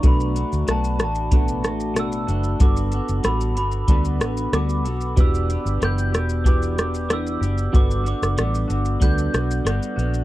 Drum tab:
HH |x-x-x-x-x-x-x-x-|x-x-x-x-x-x-x-x-|x-x-x-x-x-x-x-x-|x-x-x-x-x-x-x-x-|
SH |xxxxxxxxxxxxxxxx|xxxxxxxxxxxxxxxx|xxxxxxxxxxxxxxxx|xxxxxxxxxxxxxxxx|
SD |----r-r---r-r---|----r-----r-r---|----r-r---r-r---|---rr-----r-r---|
BD |o-------o-------|o-------o-------|o-------o-------|o-------o-------|